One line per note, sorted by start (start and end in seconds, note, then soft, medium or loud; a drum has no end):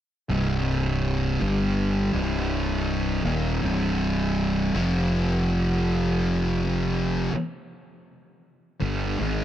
0.29 1.37 C1 loud
0.29 1.39 C2 loud
0.29 1.40 G2 loud
0.29 1.40 C3 loud
1.41 2.10 G1 medium
1.41 2.11 G2 medium
1.41 2.12 D3 loud
1.41 2.12 G3 medium
2.14 3.21 C1 medium
2.14 3.23 C2 medium
2.14 3.23 G2 loud
2.14 3.23 C3 medium
3.24 3.60 D#1 medium
3.24 3.62 D#2 medium
3.24 3.62 A#2 medium
3.24 3.63 D#3 loud
3.63 4.71 C1 medium
3.63 4.74 C2 medium
3.63 4.75 G2 medium
3.63 4.75 C3 medium
4.74 7.30 F1 medium
4.74 7.31 F2 medium
4.74 7.32 C3 loud
4.74 7.32 F3 loud
7.33 muted fingered electric bass stroke soft
7.33 muted distorted electric guitar stroke medium
8.80 9.17 G1 loud
8.80 9.18 G2 medium
8.80 9.19 D3 medium
8.80 9.19 G3 loud
9.19 9.44 G#1 medium
9.19 9.44 G#2 loud
9.19 9.44 D#3 loud
9.19 9.44 G#3 loud